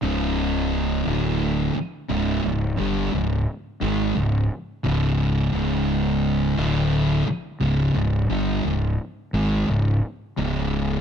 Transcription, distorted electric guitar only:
0, 0, Header, 1, 3, 480
1, 0, Start_track
1, 0, Tempo, 689655
1, 24, Time_signature, 4, 2, 24, 8
1, 7661, End_track
2, 0, Start_track
2, 0, Title_t, "Distorted electric guitar"
2, 0, Program_c, 0, 30
2, 14, Note_on_c, 0, 37, 91
2, 20, Note_on_c, 0, 44, 90
2, 21, Note_on_c, 0, 49, 93
2, 729, Note_off_c, 0, 37, 0
2, 732, Note_off_c, 0, 44, 0
2, 733, Note_off_c, 0, 49, 0
2, 738, Note_on_c, 0, 38, 82
2, 740, Note_on_c, 0, 45, 75
2, 747, Note_on_c, 0, 50, 91
2, 1211, Note_off_c, 0, 38, 0
2, 1212, Note_off_c, 0, 45, 0
2, 1215, Note_off_c, 0, 50, 0
2, 1454, Note_on_c, 0, 37, 105
2, 1458, Note_on_c, 0, 44, 105
2, 1460, Note_on_c, 0, 49, 107
2, 1689, Note_off_c, 0, 37, 0
2, 1690, Note_off_c, 0, 44, 0
2, 1692, Note_off_c, 0, 49, 0
2, 1696, Note_on_c, 0, 37, 65
2, 1699, Note_on_c, 0, 44, 70
2, 1889, Note_off_c, 0, 37, 0
2, 1890, Note_off_c, 0, 44, 0
2, 1935, Note_on_c, 0, 43, 89
2, 1941, Note_on_c, 0, 50, 90
2, 1944, Note_on_c, 0, 55, 99
2, 2169, Note_off_c, 0, 43, 0
2, 2171, Note_off_c, 0, 50, 0
2, 2173, Note_off_c, 0, 55, 0
2, 2178, Note_on_c, 0, 37, 72
2, 2181, Note_on_c, 0, 44, 77
2, 2369, Note_off_c, 0, 37, 0
2, 2370, Note_off_c, 0, 44, 0
2, 2651, Note_on_c, 0, 44, 85
2, 2657, Note_on_c, 0, 51, 88
2, 2660, Note_on_c, 0, 56, 85
2, 2886, Note_off_c, 0, 44, 0
2, 2889, Note_off_c, 0, 51, 0
2, 2890, Note_off_c, 0, 56, 0
2, 2892, Note_on_c, 0, 37, 69
2, 2893, Note_on_c, 0, 44, 72
2, 3086, Note_off_c, 0, 37, 0
2, 3086, Note_off_c, 0, 44, 0
2, 3367, Note_on_c, 0, 37, 90
2, 3372, Note_on_c, 0, 44, 108
2, 3378, Note_on_c, 0, 49, 111
2, 3840, Note_off_c, 0, 37, 0
2, 3843, Note_off_c, 0, 44, 0
2, 3849, Note_off_c, 0, 49, 0
2, 3849, Note_on_c, 0, 37, 101
2, 3851, Note_on_c, 0, 44, 97
2, 3858, Note_on_c, 0, 49, 108
2, 4572, Note_off_c, 0, 37, 0
2, 4572, Note_on_c, 0, 38, 82
2, 4576, Note_off_c, 0, 44, 0
2, 4576, Note_on_c, 0, 45, 94
2, 4581, Note_off_c, 0, 49, 0
2, 4581, Note_on_c, 0, 50, 101
2, 5047, Note_off_c, 0, 38, 0
2, 5049, Note_off_c, 0, 45, 0
2, 5051, Note_off_c, 0, 50, 0
2, 5292, Note_on_c, 0, 37, 108
2, 5297, Note_on_c, 0, 44, 99
2, 5302, Note_on_c, 0, 49, 112
2, 5526, Note_off_c, 0, 37, 0
2, 5530, Note_off_c, 0, 44, 0
2, 5532, Note_off_c, 0, 49, 0
2, 5534, Note_on_c, 0, 37, 54
2, 5540, Note_on_c, 0, 44, 67
2, 5728, Note_off_c, 0, 37, 0
2, 5731, Note_off_c, 0, 44, 0
2, 5775, Note_on_c, 0, 43, 89
2, 5783, Note_on_c, 0, 50, 93
2, 5785, Note_on_c, 0, 55, 88
2, 6010, Note_off_c, 0, 43, 0
2, 6014, Note_off_c, 0, 50, 0
2, 6015, Note_off_c, 0, 55, 0
2, 6021, Note_on_c, 0, 37, 67
2, 6023, Note_on_c, 0, 44, 73
2, 6212, Note_off_c, 0, 37, 0
2, 6213, Note_off_c, 0, 44, 0
2, 6499, Note_on_c, 0, 44, 79
2, 6505, Note_on_c, 0, 51, 86
2, 6508, Note_on_c, 0, 56, 87
2, 6732, Note_off_c, 0, 44, 0
2, 6736, Note_off_c, 0, 51, 0
2, 6737, Note_off_c, 0, 56, 0
2, 6741, Note_on_c, 0, 37, 69
2, 6743, Note_on_c, 0, 44, 76
2, 6933, Note_off_c, 0, 37, 0
2, 6934, Note_off_c, 0, 44, 0
2, 7218, Note_on_c, 0, 37, 90
2, 7222, Note_on_c, 0, 44, 100
2, 7228, Note_on_c, 0, 49, 107
2, 7661, Note_off_c, 0, 37, 0
2, 7661, Note_off_c, 0, 44, 0
2, 7661, Note_off_c, 0, 49, 0
2, 7661, End_track
3, 0, Start_track
3, 0, Title_t, "Muted distorted electric guitar strokes"
3, 1219, Note_on_c, 9, 29, 56
3, 1289, Note_off_c, 9, 29, 0
3, 5058, Note_on_c, 9, 29, 61
3, 5127, Note_off_c, 9, 29, 0
3, 7661, End_track
0, 0, End_of_file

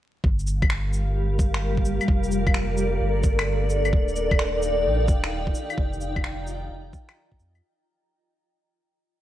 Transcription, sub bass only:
0, 0, Header, 1, 2, 480
1, 0, Start_track
1, 0, Key_signature, -2, "minor"
1, 0, Tempo, 461538
1, 249, Time_signature, 4, 2, 24, 8
1, 9580, End_track
2, 0, Start_track
2, 0, Title_t, "Sub bass"
2, 0, Program_c, 0, 38
2, 248, Note_on_c, 0, 31, 96
2, 2068, Note_off_c, 0, 31, 0
2, 2164, Note_on_c, 0, 29, 96
2, 3116, Note_off_c, 0, 29, 0
2, 3129, Note_on_c, 0, 31, 89
2, 4079, Note_off_c, 0, 31, 0
2, 4087, Note_on_c, 0, 27, 94
2, 5047, Note_on_c, 0, 34, 84
2, 5062, Note_off_c, 0, 27, 0
2, 5287, Note_on_c, 0, 27, 90
2, 5303, Note_off_c, 0, 34, 0
2, 5758, Note_off_c, 0, 27, 0
2, 6008, Note_on_c, 0, 29, 96
2, 6958, Note_off_c, 0, 29, 0
2, 6967, Note_on_c, 0, 29, 88
2, 7195, Note_off_c, 0, 29, 0
2, 7691, Note_on_c, 0, 41, 82
2, 7917, Note_off_c, 0, 41, 0
2, 9580, End_track
0, 0, End_of_file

